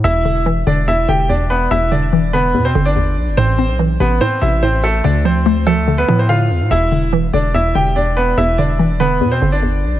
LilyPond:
<<
  \new Staff \with { instrumentName = "Grand piano" } { \time 4/4 \key e \phrygian \tempo 4 = 144 <e' e''>4 r8 <d' d''>8 <e' e''>8 <g' g''>8 <d' d''>8 <b b'>8 | <e' e''>8 <d' d''>4 <b b'>8. <c' c''>8 <d' d''>4~ <d' d''>16 | <c' c''>4 r8 <b b'>8 <c' c''>8 <e' e''>8 <c' c''>8 <a a'>8 | <d' d''>8 <c' c''>4 <a a'>8. <b b'>8 <c' c''>16 <f' f''>4 |
<e' e''>4 r8 <d' d''>8 <e' e''>8 <g' g''>8 <d' d''>8 <b b'>8 | <e' e''>8 <d' d''>4 <b b'>8. <c' c''>8 <d' d''>4~ <d' d''>16 | }
  \new Staff \with { instrumentName = "Synth pluck" } { \clef bass \time 4/4 \key e \phrygian e,8 d8 e8 d8 e,8 d8 e,4 | e,8 d8 e8 d8 e,8 d8 e,4 | a,8 c'8 e8 c8 a,8 c8 a,4 | d8 f8 a8 f8 d8 f8 d4 |
e,8 d8 e8 d8 e,8 d8 e,4 | e,8 d8 e8 d8 e,8 d8 e,4 | }
  \new Staff \with { instrumentName = "808-style bass" } { \clef bass \time 4/4 \key e \phrygian e,,4. e,,4 e,,4. | e,,2 b,8 g,,4 b,,16 g,,16 | a,,8. b,,8. a,,8 r8 a,,4. | d,2~ d,8 a,4 e,16 a,16 |
e,,4. e,,4 e,,4. | e,,2 b,8 g,,4 b,,16 g,,16 | }
>>